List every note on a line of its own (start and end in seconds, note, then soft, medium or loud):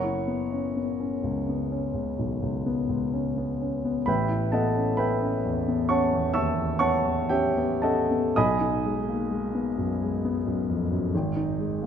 0.00 4.02 F#1 soft
0.00 0.43 E4 soft
0.00 4.02 C#5 soft
0.00 4.02 F#5 soft
0.00 4.02 A#5 soft
0.00 4.05 C#6 medium
0.27 0.67 B3 soft
0.52 0.77 C#4 soft
0.77 1.15 B3 soft
1.00 1.39 C#4 soft
1.24 1.62 C#2 soft
1.49 1.87 B3 soft
1.72 2.10 C#4 soft
1.94 2.32 C#2 soft
2.19 2.42 B1 soft
2.42 2.80 C#2 soft
2.66 3.04 B3 soft
2.89 3.27 C#2 soft
3.13 3.51 C#4 soft
3.37 3.75 B3 soft
3.61 3.98 C#4 soft
3.85 4.07 B3 soft
4.06 8.31 A1 soft
4.06 4.50 B4 soft
4.06 4.50 E5 soft
4.06 4.50 G5 soft
4.06 4.52 B5 medium
4.29 4.66 E4 soft
4.52 4.90 B3 soft
4.52 4.96 A4 soft
4.52 4.96 D#5 soft
4.52 4.96 F#5 soft
4.52 4.99 A5 medium
4.76 4.99 C#4 soft
4.97 5.35 B3 soft
4.97 5.85 B4 soft
4.97 5.85 E5 soft
4.97 5.85 G5 soft
4.97 5.89 B5 medium
5.22 5.58 C#4 soft
5.45 5.81 E2 soft
5.68 6.03 B3 soft
5.89 6.25 C#4 soft
5.89 6.31 C#5 soft
5.89 6.31 F#5 soft
5.89 6.31 A5 soft
5.89 6.33 C#6 medium
6.13 6.48 E2 soft
6.34 6.56 D#2 soft
6.34 6.76 E5 soft
6.34 6.77 A5 medium
6.34 6.76 C#6 soft
6.34 6.79 E6 medium
6.57 6.94 E2 soft
6.79 7.19 B3 soft
6.79 7.26 C#5 medium
6.79 7.26 F#5 medium
6.79 7.26 A5 medium
6.79 7.29 C#6 medium
7.06 7.46 E2 soft
7.29 7.72 C#4 soft
7.29 7.79 G4 soft
7.29 7.79 C#5 soft
7.29 7.79 E5 soft
7.29 7.83 G5 medium
7.57 7.99 B3 soft
7.82 8.25 C#4 soft
7.82 8.32 A4 soft
7.82 8.32 D#5 medium
7.82 8.32 F#5 soft
7.82 8.35 A5 medium
8.11 8.36 B3 soft
8.36 11.10 B1 soft
8.36 11.86 D#5 medium
8.36 11.86 G#5 medium
8.36 11.86 B5 medium
8.36 11.86 D#6 medium
8.60 8.98 D#4 soft
8.85 9.22 G#3 soft
9.08 9.31 A#3 soft
9.30 9.67 G#3 soft
9.54 9.91 B3 soft
9.78 10.14 F#2 soft
10.02 10.37 G#3 soft
10.25 10.59 B3 soft
10.47 10.82 F#2 soft
10.69 10.91 F2 soft
10.91 11.13 F#2 soft
11.15 11.86 G#1 medium
11.36 11.72 D#4 soft
11.59 11.86 G#3 soft
11.82 11.86 A#3 soft